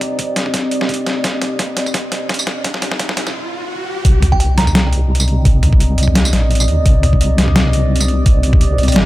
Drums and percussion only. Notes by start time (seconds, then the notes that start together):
0.01 closed hi-hat, mid tom
0.19 kick, closed hi-hat
0.36 snare, closed hi-hat
0.46 mid tom
0.54 kick, snare, closed hi-hat
0.71 closed hi-hat
0.81 snare
0.89 kick, closed hi-hat
0.94 closed hi-hat
1.07 snare, closed hi-hat
1.24 kick, snare, closed hi-hat
1.42 snare, closed hi-hat, mid tom
1.59 kick, snare, closed hi-hat
1.77 snare, closed hi-hat
1.86 mid tom, tambourine
1.94 kick, snare, closed hi-hat
2.12 snare, closed hi-hat
2.29 kick, snare, closed hi-hat
2.34 closed hi-hat
2.39 tambourine
2.47 snare, closed hi-hat
2.64 kick, snare, closed hi-hat
2.74 snare
2.82 snare, closed hi-hat, mid tom
2.92 snare
2.99 kick, snare, closed hi-hat
3.09 snare
3.17 snare, closed hi-hat
3.27 snare, mid tom, tambourine
4.05 kick, closed hi-hat
4.22 closed hi-hat, mid tom
4.32 kick
4.40 closed hi-hat
4.58 snare, closed hi-hat
4.67 mid tom, tambourine
4.75 snare, closed hi-hat
4.93 closed hi-hat
5.15 closed hi-hat
5.20 tambourine
5.28 closed hi-hat
5.45 kick, closed hi-hat
5.63 closed hi-hat, mid tom
5.73 kick
5.80 closed hi-hat
5.98 closed hi-hat
6.03 tambourine
6.08 mid tom
6.15 snare, closed hi-hat
6.25 tambourine
6.33 snare, closed hi-hat
6.51 closed hi-hat
6.55 closed hi-hat
6.60 tambourine
6.68 closed hi-hat
6.86 kick, closed hi-hat
7.03 closed hi-hat, mid tom
7.13 kick
7.21 closed hi-hat
7.38 snare, closed hi-hat
7.48 mid tom
7.56 snare, closed hi-hat
7.73 closed hi-hat
7.96 closed hi-hat
8.01 tambourine
8.08 closed hi-hat
8.26 kick, closed hi-hat
8.43 closed hi-hat
8.53 kick, mid tom
8.61 closed hi-hat
8.78 closed hi-hat
8.83 closed hi-hat
8.88 closed hi-hat, mid tom, tambourine
8.92 snare, closed hi-hat